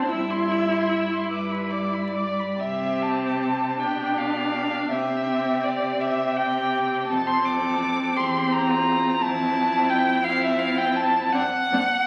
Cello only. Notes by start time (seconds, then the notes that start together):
0.11 G2
1.31 G2
2.61 C3
3.82 B2
4.92 C3
7.10 F2
8.18 E2
9.23 F2
11.34 F#2
11.71 F#2